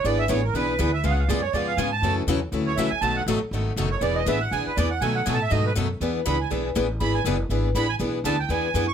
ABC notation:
X:1
M:4/4
L:1/8
Q:"Swing" 1/4=242
K:Emix
V:1 name="Accordion"
d e c ^A B3 e | (3^e f e d c d e g a- | a z4 c e g | a f z4 z c |
d ^d e f g B =d f | g f (3g a e ^d B z2 | z2 b g z4 | b g z4 b g |
z2 a =g ^g3 c' |]
V:2 name="Steel-string acoustic guitar"
[E,B,DGB] z [E,B,DGB] z [E,B,DGB] z [E,B,DGB] z | [C,G,B,^EG] z [C,G,B,EG] z [C,G,B,EG] z [C,G,B,EG] z | [F,CEA] z [F,CEA] z [F,CEA] z [F,CEA] z | [B,,^D,F,B,^DA] z [B,,D,F,B,DA] z [B,,D,F,B,DA] z [B,,D,F,B,DA] z |
[E,B,DGB] z [E,B,DGB] z [E,B,DGB] z [E,B,DGB] z | [B,,^D,F,B,^DA] z [B,,D,F,B,DA] z [B,,D,F,B,DA] z [B,,D,F,B,DA] z | [E,B,DGB] z [E,B,DGB] z [E,B,DGB] z [E,B,DGB] z | [E,B,DGB] z [E,B,DGB] z [E,B,DGB] z [E,B,DGB] z |
[E,B,DGB] z [E,B,DGB] z [E,B,DGB] z [E,B,DGB] z |]
V:3 name="Steel-string acoustic guitar"
[E,B,DG] z [E,B,DG] z [E,B,DG] z [E,B,DG] z | [C,G,B,^EG] z [C,G,B,EG] z [C,G,B,EG] z [C,G,B,EG] z | [C,E,A,CF] z [C,E,A,CF] z [C,E,A,CF] z [C,E,A,CF] z | [B,,F,A,^DF] z [B,,F,A,DF] z [B,,F,A,DF] z [B,,F,A,DF] z |
[E,B,DG] z [E,B,DG] z [E,B,DG] z [E,B,DG] z | [B,,F,A,^DF] z [B,,F,A,DF] z [B,,F,A,DF] z [B,,F,A,DF] z | [E,B,DG] z [E,B,DG] z [E,B,DG] z [E,B,DG] z | [E,B,DG] z [E,B,DG] z [E,B,DG] z [E,B,DG] z |
[E,B,DG] z [E,B,DG] z [E,B,DG] z [E,B,DG] z |]
V:4 name="Upright bass" clef=bass
G,,,2 A,,,2 B,,,2 D,,2 | C,,2 F,,2 ^E,,2 G,,2 | F,,2 E,,2 D,,2 C,, z | B,,,2 A,,, z G,,,2 F,,,2 |
E,,,2 A,,,2 B,,, z E,,2 | B,,2 A,,2 G,,2 F,,2 | E,,2 C,,2 B,,,2 A,,,2 | G,,,2 F,,,2 G,,,2 A,,,2 |
B,,,2 D,,2 E,,2 F,,2 |]